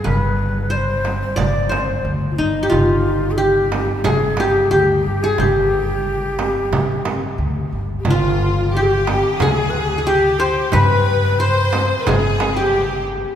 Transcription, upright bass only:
X:1
M:4/4
L:1/8
Q:1/4=90
K:none
V:1 name="Upright bass" clef=bass
G,,,4 G,,,2 D,, G,,, | G,,,4 G,,,2 D,, G,,, | G,,,4 G,,,2 D,, G,,, | G,,,4 D,,4 |
G,,4 G,,,4 |]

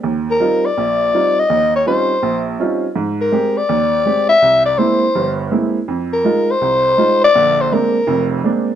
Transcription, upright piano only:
X:1
M:4/4
L:1/8
Q:"Swing" 1/4=164
K:Eb
V:1 name="Upright piano"
E,,2 [G,CEF] z B,,,2 [G,CEF] z | E,,2 [G,C_DEF] z B,,,2 [G,CDEF] z | A,,2 [A,CG] z E,,2 [A,CG] z | C,,2 [A,B,C=E] z [G,,,G,,]2 [A,B,CE] z |
F,,2 [A,EF] z C,,2 [A,EF] z | [B,,,D,]2 [A,B,CD] z [F,,,F,,]2 [A,B,CD] z |]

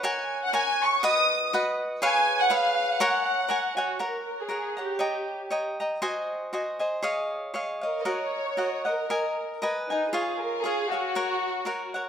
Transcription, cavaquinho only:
X:1
M:2/4
L:1/8
Q:"Swing" 1/4=118
K:F#
V:1 name="Cavaquinho"
[Acfg]2 [Acfg]2 | [FBdf]2 [FBdf]2 | [GBce]2 [GBce]2 | [Acfg]2 [Acfg] [cfg] |
[Acfa]2 [Acfa] [cfa] | [cd=ga]2 [cdga] [dga] | [F^Bdg]2 [FBdg] [Bdg] | [Gcde]2 [Gcde] [cde] |
[FAdf]2 [FAdf] [Adf] | [Adg]2 [ABdg] [Bdg] | [EGce]2 [EGce] [Gce] | [FAcf]2 [FAcf] [Acf] |]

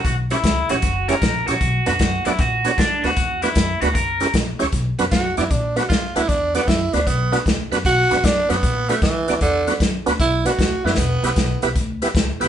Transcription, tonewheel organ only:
X:1
M:4/4
L:1/16
Q:"Swing" 1/4=154
K:Bm
V:1 name="Tonewheel organ"
z2 [CEGc] z3 [CEGc] z3 [CEGc] z3 [CEGc] z | z2 [B,DFB] z3 [B,DFd] z3 [B,DFc] z3 [B,DFB] z | z2 [B,DFB] z3 [B,DFB] z3 [CEG^A] z3 [CEGc] z | z2 [B,DFB] z3 [B,DFd] z3 [B,DFB] z3 [B,DFB] z |
z2 [B,DFd] z3 [B,DFB] z3 [B,DFB] z3 [B,DFB] z | z2 [B,DFB] z3 [B,DFB] z3 [B,DFB] z3 [B,DFd] z | z2 [B,DFB] z3 [B,DFB] z3 [B,DFB] z3 [B,DFB] z | z2 [B,EGB] z3 [B,EGB] z3 [B,EGB] z3 [B,EGB] z |]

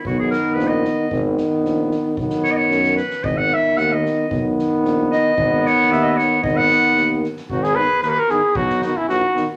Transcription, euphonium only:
X:1
M:2/4
L:1/8
Q:1/4=113
K:G#m
V:1 name="Euphonium" clef=bass
D,4 | D,4 | D,3 z | D,4 |
D,4 | D,4 | D,3 z | z D, z D, |
z D, z D, |]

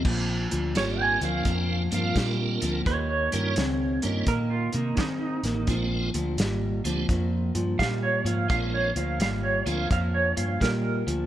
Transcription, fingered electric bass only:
X:1
M:4/4
L:1/8
Q:"Swing" 1/4=85
K:Bbmix
V:1 name="Fingered electric bass" clef=bass
B,,, D,, A,,, D,, F,, G,, B,, D,, | E,, G,, _D,, G,, B,, C, E, =A,,, | B,,, D,, A,,, D,, F,, G,, B,, A,, | B,,, D,, A,,, D,, F,, G,, B,, D,, |]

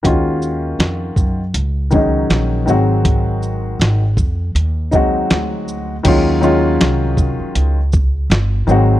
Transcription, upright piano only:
X:1
M:4/4
L:1/16
Q:"Swing 16ths" 1/4=80
K:Ebdor
V:1 name="Upright piano" clef=bass
[E,A,DFG]6- [E,A,DFG] z3 [E,G,A,DE]4 [E,G,A,CG]2- | [E,G,A,CG]4- [E,G,A,CG] z4 z [G,A,CEG]6 | [E,G,A,DF]2 [E,G,A,DF]6- [E,G,A,DF] z4 z [E,G,A,CG]2 |]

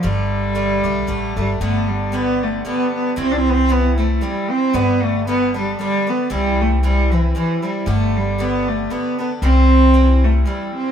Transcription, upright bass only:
X:1
M:3/4
L:1/8
Q:"Swing" 1/4=115
K:G
V:1 name="Upright bass" clef=bass
G,,,3 B,,, A,,, G,,, | G,,,4 z2 | C,,4 z2 | G,,,4 z2 |
C,,4 z2 | G,,,4 z2 | C,,4 z2 |]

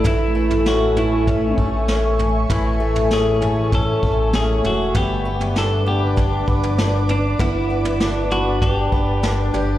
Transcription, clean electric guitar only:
X:1
M:4/4
L:1/8
Q:1/4=98
K:A
V:1 name="Clean electric guitar"
E2 F E2 z3 | z2 G2 A2 G F | =G2 A G2 z2 D | E3 F =G3 z |]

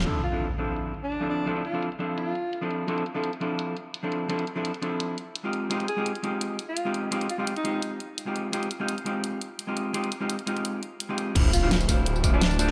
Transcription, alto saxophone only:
X:1
M:4/4
L:1/16
Q:"Swing 16ths" 1/4=170
K:Dm
V:1 name="Alto saxophone"
z2 F2 z6 z D2 z D2 | z2 F2 z4 F6 z2 | z16 | z16 |
z2 _A2 z6 z F2 z3 | z2 F F z _E4 z6 z | z16 | z16 |
z2 F2 z6 z D2 z D2 |]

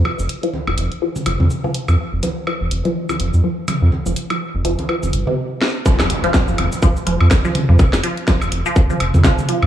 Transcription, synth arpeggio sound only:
X:1
M:4/4
L:1/16
Q:"Swing 16ths" 1/4=124
K:Cphr
V:1 name="Synth arpeggio sound" clef=bass
F, z2 F, z F, z2 F, z F, z2 F, z F, | z2 F, z F, z2 F, z F, z2 F, z F, z | z F, z F, z2 F, z F, z2 C, z4 | F, z2 F, z F, z2 F, z F, z2 F, z F, |
z2 F, z F, z2 F, z F, z2 F, z F, z |]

